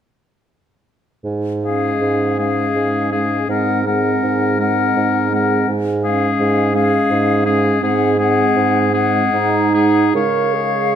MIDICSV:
0, 0, Header, 1, 6, 480
1, 0, Start_track
1, 0, Key_signature, -5, "major"
1, 0, Tempo, 785340
1, 763, Time_signature, 3, 2, 24, 8
1, 763, Tempo, 755668
1, 1723, Tempo, 734394
1, 3163, Tempo, 716846
1, 5563, Tempo, 785340
1, 7033, End_track
2, 0, Start_track
2, 0, Title_t, "Flute"
2, 0, Program_c, 0, 73
2, 1009, Note_on_c, 0, 77, 30
2, 1478, Note_off_c, 0, 77, 0
2, 1485, Note_on_c, 0, 77, 29
2, 1951, Note_off_c, 0, 77, 0
2, 1959, Note_on_c, 0, 77, 21
2, 2191, Note_off_c, 0, 77, 0
2, 2195, Note_on_c, 0, 78, 27
2, 2433, Note_off_c, 0, 78, 0
2, 2440, Note_on_c, 0, 78, 29
2, 2915, Note_off_c, 0, 78, 0
2, 2929, Note_on_c, 0, 78, 33
2, 3397, Note_off_c, 0, 78, 0
2, 3405, Note_on_c, 0, 78, 26
2, 3640, Note_off_c, 0, 78, 0
2, 3879, Note_on_c, 0, 77, 38
2, 4343, Note_off_c, 0, 77, 0
2, 4356, Note_on_c, 0, 77, 38
2, 4824, Note_off_c, 0, 77, 0
2, 4840, Note_on_c, 0, 77, 32
2, 5076, Note_off_c, 0, 77, 0
2, 5082, Note_on_c, 0, 78, 37
2, 5318, Note_off_c, 0, 78, 0
2, 5329, Note_on_c, 0, 78, 43
2, 5790, Note_off_c, 0, 78, 0
2, 5808, Note_on_c, 0, 78, 41
2, 6286, Note_off_c, 0, 78, 0
2, 6297, Note_on_c, 0, 78, 28
2, 6537, Note_off_c, 0, 78, 0
2, 6544, Note_on_c, 0, 77, 34
2, 7033, Note_off_c, 0, 77, 0
2, 7033, End_track
3, 0, Start_track
3, 0, Title_t, "Oboe"
3, 0, Program_c, 1, 68
3, 1015, Note_on_c, 1, 68, 27
3, 1481, Note_off_c, 1, 68, 0
3, 1489, Note_on_c, 1, 68, 28
3, 1953, Note_off_c, 1, 68, 0
3, 1963, Note_on_c, 1, 68, 27
3, 2195, Note_off_c, 1, 68, 0
3, 2206, Note_on_c, 1, 70, 26
3, 2438, Note_off_c, 1, 70, 0
3, 2448, Note_on_c, 1, 70, 27
3, 2919, Note_off_c, 1, 70, 0
3, 2927, Note_on_c, 1, 70, 30
3, 3396, Note_off_c, 1, 70, 0
3, 3417, Note_on_c, 1, 70, 33
3, 3646, Note_off_c, 1, 70, 0
3, 3883, Note_on_c, 1, 68, 34
3, 4345, Note_off_c, 1, 68, 0
3, 4362, Note_on_c, 1, 68, 34
3, 4827, Note_off_c, 1, 68, 0
3, 4834, Note_on_c, 1, 68, 37
3, 5073, Note_off_c, 1, 68, 0
3, 5084, Note_on_c, 1, 68, 31
3, 5319, Note_off_c, 1, 68, 0
3, 5324, Note_on_c, 1, 68, 40
3, 5787, Note_off_c, 1, 68, 0
3, 5804, Note_on_c, 1, 68, 40
3, 6283, Note_off_c, 1, 68, 0
3, 6295, Note_on_c, 1, 68, 36
3, 6536, Note_off_c, 1, 68, 0
3, 6546, Note_on_c, 1, 73, 29
3, 7033, Note_off_c, 1, 73, 0
3, 7033, End_track
4, 0, Start_track
4, 0, Title_t, "Clarinet"
4, 0, Program_c, 2, 71
4, 1006, Note_on_c, 2, 61, 25
4, 1477, Note_off_c, 2, 61, 0
4, 1491, Note_on_c, 2, 61, 25
4, 1954, Note_off_c, 2, 61, 0
4, 1965, Note_on_c, 2, 61, 25
4, 2197, Note_off_c, 2, 61, 0
4, 2205, Note_on_c, 2, 60, 27
4, 2438, Note_off_c, 2, 60, 0
4, 2442, Note_on_c, 2, 60, 29
4, 2916, Note_off_c, 2, 60, 0
4, 2925, Note_on_c, 2, 60, 30
4, 3390, Note_off_c, 2, 60, 0
4, 3394, Note_on_c, 2, 60, 31
4, 3634, Note_off_c, 2, 60, 0
4, 3879, Note_on_c, 2, 61, 34
4, 4343, Note_off_c, 2, 61, 0
4, 4352, Note_on_c, 2, 61, 34
4, 4822, Note_off_c, 2, 61, 0
4, 4832, Note_on_c, 2, 61, 37
4, 5069, Note_off_c, 2, 61, 0
4, 5073, Note_on_c, 2, 60, 36
4, 5313, Note_off_c, 2, 60, 0
4, 5319, Note_on_c, 2, 60, 40
4, 5785, Note_off_c, 2, 60, 0
4, 5791, Note_on_c, 2, 60, 36
4, 6028, Note_off_c, 2, 60, 0
4, 6034, Note_on_c, 2, 63, 56
4, 6539, Note_on_c, 2, 70, 51
4, 6548, Note_off_c, 2, 63, 0
4, 6777, Note_on_c, 2, 68, 42
4, 6786, Note_off_c, 2, 70, 0
4, 7033, Note_off_c, 2, 68, 0
4, 7033, End_track
5, 0, Start_track
5, 0, Title_t, "French horn"
5, 0, Program_c, 3, 60
5, 1006, Note_on_c, 3, 56, 27
5, 1477, Note_off_c, 3, 56, 0
5, 1484, Note_on_c, 3, 56, 25
5, 1951, Note_off_c, 3, 56, 0
5, 1962, Note_on_c, 3, 56, 27
5, 2195, Note_off_c, 3, 56, 0
5, 2203, Note_on_c, 3, 56, 28
5, 2436, Note_off_c, 3, 56, 0
5, 2443, Note_on_c, 3, 56, 31
5, 2917, Note_off_c, 3, 56, 0
5, 2919, Note_on_c, 3, 56, 27
5, 3392, Note_off_c, 3, 56, 0
5, 3404, Note_on_c, 3, 56, 33
5, 3639, Note_off_c, 3, 56, 0
5, 3884, Note_on_c, 3, 56, 33
5, 4346, Note_off_c, 3, 56, 0
5, 4360, Note_on_c, 3, 56, 40
5, 4826, Note_off_c, 3, 56, 0
5, 4837, Note_on_c, 3, 56, 40
5, 5074, Note_off_c, 3, 56, 0
5, 5080, Note_on_c, 3, 56, 38
5, 5316, Note_off_c, 3, 56, 0
5, 5325, Note_on_c, 3, 56, 39
5, 5788, Note_off_c, 3, 56, 0
5, 5806, Note_on_c, 3, 56, 34
5, 6285, Note_off_c, 3, 56, 0
5, 6296, Note_on_c, 3, 56, 32
5, 6537, Note_off_c, 3, 56, 0
5, 6545, Note_on_c, 3, 56, 34
5, 7033, Note_off_c, 3, 56, 0
5, 7033, End_track
6, 0, Start_track
6, 0, Title_t, "Bassoon"
6, 0, Program_c, 4, 70
6, 759, Note_on_c, 4, 44, 33
6, 1192, Note_off_c, 4, 44, 0
6, 1246, Note_on_c, 4, 44, 34
6, 1666, Note_off_c, 4, 44, 0
6, 1717, Note_on_c, 4, 44, 27
6, 2140, Note_off_c, 4, 44, 0
6, 2198, Note_on_c, 4, 44, 37
6, 2624, Note_off_c, 4, 44, 0
6, 2684, Note_on_c, 4, 44, 39
6, 3107, Note_off_c, 4, 44, 0
6, 3164, Note_on_c, 4, 44, 33
6, 3588, Note_off_c, 4, 44, 0
6, 3642, Note_on_c, 4, 44, 41
6, 4064, Note_off_c, 4, 44, 0
6, 4125, Note_on_c, 4, 44, 43
6, 4483, Note_off_c, 4, 44, 0
6, 4597, Note_on_c, 4, 44, 42
6, 5023, Note_off_c, 4, 44, 0
6, 5083, Note_on_c, 4, 44, 51
6, 5509, Note_off_c, 4, 44, 0
6, 5570, Note_on_c, 4, 44, 54
6, 5981, Note_off_c, 4, 44, 0
6, 6040, Note_on_c, 4, 44, 37
6, 6483, Note_off_c, 4, 44, 0
6, 6536, Note_on_c, 4, 49, 37
6, 7033, Note_off_c, 4, 49, 0
6, 7033, End_track
0, 0, End_of_file